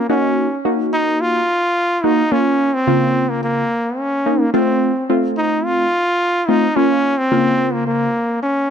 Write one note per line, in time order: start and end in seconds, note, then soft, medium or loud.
0.09 0.47 A#3 medium
0.09 0.61 C#4 medium
0.09 0.47 D#4 medium
0.09 0.47 F#4 medium
0.65 1.41 A#3 medium
0.65 1.41 D#4 medium
0.65 1.41 F#4 medium
0.93 1.22 D#4 loud
1.21 2.06 F4 loud
2.04 2.23 A#3 medium
2.04 2.23 D#4 medium
2.04 2.34 D#4 medium
2.04 2.23 F#4 medium
2.32 2.70 A#3 medium
2.32 2.70 C#4 medium
2.32 2.75 C#4 loud
2.32 2.70 F4 medium
2.74 3.31 C4 medium
2.87 3.63 C#3 medium
2.87 3.63 A#3 medium
2.87 3.63 F4 medium
3.29 3.42 A#3 medium
3.43 4.00 A#3 medium
3.99 4.42 C#4 medium
4.26 4.45 A#3 medium
4.26 4.45 C#4 medium
4.26 4.45 D#4 medium
4.40 4.53 A#3 medium
4.54 4.92 A3 medium
4.54 4.92 C4 medium
4.54 5.06 C4 medium
4.54 4.92 F4 medium
5.10 5.86 A3 medium
5.10 5.86 C4 medium
5.10 5.86 F4 medium
5.37 5.67 D#4 loud
5.65 6.50 F4 loud
6.48 6.67 A3 medium
6.48 6.67 C4 medium
6.48 6.78 D#4 loud
6.48 6.67 F4 medium
6.76 7.14 A#3 medium
6.76 7.19 C#4 loud
6.76 7.14 C#4 medium
6.76 7.14 F4 medium
7.18 7.75 C4 medium
7.32 8.08 C#3 medium
7.32 8.08 A#3 medium
7.32 8.08 F4 medium
7.73 7.86 A#3 medium
7.87 8.39 A#3 medium
8.43 8.70 C#4 medium